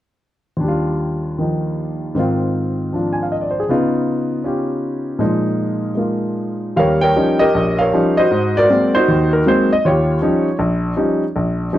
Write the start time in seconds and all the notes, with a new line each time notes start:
0.57 D#2 D4
0.64 G3
0.68 F4
1.39 D#3 F3 D#4
2.15 G#2 D#3 C4
2.19 F4
2.93 F3 D4 F4
3.13 G#5
3.23 F5
3.32 D#5
3.41 D5
3.51 C5
3.60 G#4
3.69 C#3 B3 D#4 F4
4.44 C#4 F4 G4
5.19 A#2 F3 G#3 D#4
5.95 G#3 A#3 F4
6.76 D#2 G3 A#4 C#5 F5
7.01 A#4 C#5 G5
7.16 F3 G3 C#4 D#4
7.39 G4 A#4 D#5
7.54 A#1
7.79 A#4 C#5 F5
7.93 F3 G3 C#4 D#4
8.17 F#4 C5 D#5
8.31 G#2
8.57 F#4 A#4 D5
8.69 F#3 G#3 A#3 C4
8.95 D#4 F#4 C5
9.08 D#2
9.33 A#4
9.46 F#3 G#3 A#3 C4 C5
9.73 D#5
9.85 D#2 F4 G4 C#5
10.22 F3 G3 C#4 D#4
10.59 A#1
10.96 F3 G3 C#4 D#4
11.36 A#1
11.73 F3 G3 C#4 D#4